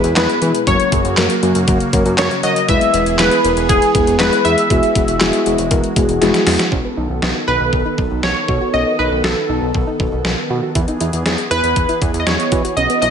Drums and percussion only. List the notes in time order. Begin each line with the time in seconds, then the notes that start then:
0.04 closed hi-hat
0.16 snare, clap, closed hi-hat
0.30 closed hi-hat
0.42 closed hi-hat
0.55 closed hi-hat
0.67 kick, closed hi-hat
0.80 closed hi-hat
0.92 kick, closed hi-hat
1.05 closed hi-hat
1.17 snare, clap, closed hi-hat
1.30 closed hi-hat
1.43 closed hi-hat
1.55 closed hi-hat
1.68 kick, closed hi-hat
1.80 closed hi-hat
1.93 kick, closed hi-hat
2.06 closed hi-hat
2.18 snare, clap, closed hi-hat
2.31 closed hi-hat
2.43 closed hi-hat
2.56 closed hi-hat
2.68 kick, closed hi-hat
2.81 closed hi-hat
2.94 closed hi-hat
3.06 closed hi-hat
3.19 snare, clap, closed hi-hat
3.31 closed hi-hat
3.45 closed hi-hat
3.57 closed hi-hat
3.69 kick, closed hi-hat
3.82 closed hi-hat
3.95 kick, closed hi-hat
4.07 closed hi-hat
4.20 snare, clap, closed hi-hat
4.33 closed hi-hat
4.45 closed hi-hat
4.58 closed hi-hat
4.70 kick, closed hi-hat
4.83 closed hi-hat
4.95 kick, closed hi-hat
5.08 closed hi-hat
5.21 snare, clap, closed hi-hat
5.33 closed hi-hat
5.46 closed hi-hat
5.58 closed hi-hat
5.71 kick, closed hi-hat
5.84 closed hi-hat
5.96 kick, closed hi-hat
6.09 closed hi-hat
6.22 snare, closed hi-hat
6.34 snare, closed hi-hat
6.47 snare, open hi-hat
6.59 snare, closed hi-hat
6.72 kick
7.22 snare
7.73 kick
7.98 kick
8.23 snare
8.48 kick
9.24 snare
9.74 kick
10.00 kick
10.25 snare
10.75 kick, closed hi-hat
10.88 closed hi-hat
11.01 closed hi-hat
11.13 closed hi-hat
11.26 snare, closed hi-hat
11.38 closed hi-hat
11.51 closed hi-hat
11.64 closed hi-hat
11.76 kick, closed hi-hat
11.89 closed hi-hat
12.02 kick, closed hi-hat
12.14 closed hi-hat
12.27 snare, closed hi-hat
12.40 closed hi-hat
12.52 kick, closed hi-hat
12.65 closed hi-hat
12.77 closed hi-hat
12.90 closed hi-hat
13.02 closed hi-hat